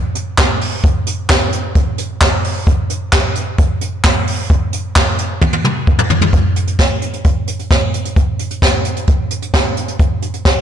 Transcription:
0.15 closed hi-hat medium
0.38 kick loud
0.38 snare loud
0.38 clap medium
0.38 closed hi-hat medium
0.61 open hi-hat medium
0.84 kick loud
0.84 closed hi-hat medium
1.06 closed hi-hat medium
1.30 kick loud
1.30 snare loud
1.30 clap medium
1.30 closed hi-hat medium
1.52 closed hi-hat medium
1.75 kick loud
1.75 closed hi-hat medium
1.98 closed hi-hat medium
2.21 kick loud
2.21 snare loud
2.21 clap medium
2.21 closed hi-hat medium
2.44 open hi-hat medium
2.67 kick loud
2.67 closed hi-hat medium
2.90 closed hi-hat medium
3.13 kick loud
3.13 snare loud
3.13 clap medium
3.13 closed hi-hat medium
3.35 closed hi-hat medium
3.58 kick loud
3.58 closed hi-hat medium
3.81 closed hi-hat medium
4.04 kick loud
4.04 snare loud
4.04 clap medium
4.04 closed hi-hat medium
4.27 open hi-hat medium
4.50 kick loud
4.50 closed hi-hat medium
4.73 closed hi-hat medium
4.96 kick loud
4.96 snare loud
4.96 clap medium
4.96 closed hi-hat medium
5.18 closed hi-hat medium
5.41 kick loud
5.41 high tom medium
5.53 high tom medium
5.65 mid tom medium
5.87 kick loud
5.99 mid tom medium
6.10 floor tom loud
6.21 floor tom loud
6.33 kick loud
6.33 closed hi-hat medium
6.56 closed hi-hat medium
6.67 closed hi-hat medium
6.79 kick loud
6.79 snare loud
7.02 closed hi-hat medium
7.13 closed hi-hat medium
7.24 kick loud
7.24 closed hi-hat medium
7.47 closed hi-hat medium
7.59 closed hi-hat medium
7.71 kick loud
7.71 snare loud
7.94 closed hi-hat medium
8.05 closed hi-hat medium
8.16 kick loud
8.16 closed hi-hat medium
8.39 closed hi-hat medium
8.50 closed hi-hat medium
8.62 kick loud
8.62 snare loud
8.85 closed hi-hat medium
8.96 closed hi-hat medium
9.07 kick loud
9.07 closed hi-hat medium
9.30 closed hi-hat medium
9.42 closed hi-hat medium
9.54 kick loud
9.54 snare loud
9.77 closed hi-hat medium
9.88 closed hi-hat medium
9.99 kick loud
9.99 closed hi-hat medium
10.22 closed hi-hat medium
10.34 closed hi-hat medium
10.45 kick loud
10.45 snare loud

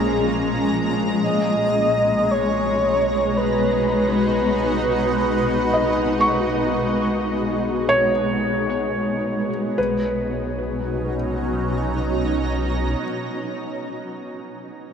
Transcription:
0.00 1.16 A#1 medium
0.00 1.21 A#2 medium
0.00 1.21 F3 medium
0.00 2.14 G#3 medium
0.00 9.77 G#3 medium
0.00 3.10 C#4 medium
0.00 9.77 A#5 medium
1.20 9.72 B1 medium
1.20 9.76 B2 medium
1.20 2.33 D#5 loud
2.31 3.39 C#5 loud
2.51 9.78 D#4 medium
2.73 9.77 F#4 medium
3.37 8.72 B4 medium
5.74 8.10 D#5 medium
6.21 9.47 C#6 medium
7.89 11.16 C#5 medium
9.78 12.95 B1 medium
9.78 13.02 B2 medium
9.78 13.03 B4 medium
9.93 13.17 F#3 medium
10.09 13.33 C#4 medium
10.24 13.49 D#4 medium
10.42 13.66 A#5 medium

